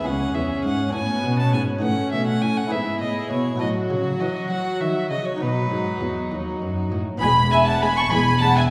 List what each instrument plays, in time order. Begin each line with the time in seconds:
Already playing: violin section G#4
0.01 harpsichord C#4 E4 G#4
0.05 cello section C#2, harpsichord C#2, viola section C#4, violin section C#4, violin F#5
0.35 harpsichord E2, cello section E2, violin E5
0.64 harpsichord G#2, cello section G#2, violin F#5
0.89 harpsichord C#4 F#4 A4
0.94 harpsichord A2, cello section A2, viola section B3, violin section C#4 F#4, violin G#5
1.24 harpsichord B2, cello section B2
1.39 violin A5
1.53 cello section G#2, harpsichord G#2, violin G#5
1.79 harpsichord D#4 F#4 B4, violin F#5
1.83 cello section A2, harpsichord A2, viola section A3, violin section F#4
2.12 cello section B2, harpsichord B2, violin E5
2.27 violin F#5
2.42 harpsichord A2, cello section A2, violin G#5
2.57 violin F#5
2.67 harpsichord E4 G#4 B4
2.71 cello section G#2, harpsichord G#2, viola section B3, violin section E4 G#4, violin E5
3.01 cello section A2, harpsichord A2, violin D#5
3.31 harpsichord B2, cello section B2, violin C#5
3.56 harpsichord E4 F#4 A4
3.60 harpsichord A2, cello section A2, viola section F#3, violin section F#4, violin D#5
3.90 cello section C#3, harpsichord C#3, violin C#5
4.20 cello section E3, harpsichord E3, violin D#5
4.50 cello section F#3, harpsichord F#3, violin F#5
4.80 cello section D#3, harpsichord D#3, violin E5
5.10 cello section C#3, harpsichord C#3, violin D#5
5.25 violin C#5
5.36 harpsichord D#4 F#4
5.40 cello section B2, harpsichord B2, viola section F#3, violin section D#4 F#4, violin B4
5.71 cello section G#2, harpsichord G#2
6.01 harpsichord E2, cello section E2
6.32 cello section D#2, harpsichord D#2
6.62 cello section F#2, harpsichord F#2
6.92 cello section A2, harpsichord A2
7.17 harpsichord B3 E4 G#4
7.22 double bass section E1, cello section E2, harpsichord E2, viola section G#3, violin section G#5 B5, violin B5
7.51 viola section G#3, violin section E5 G#5, violin G#5
7.67 violin section F#5 A5, violin A5
7.81 viola section G#3, violin section G#5 B5, violin B5
7.97 violin section A5 C#6, violin C#6
8.11 double bass section E1, cello section E2, harpsichord E2, viola section G#3, violin section G#5 B5, violin B5
8.41 viola section G#3, violin section F#5 A5, violin A5
8.56 violin section E5 G#5, violin G#5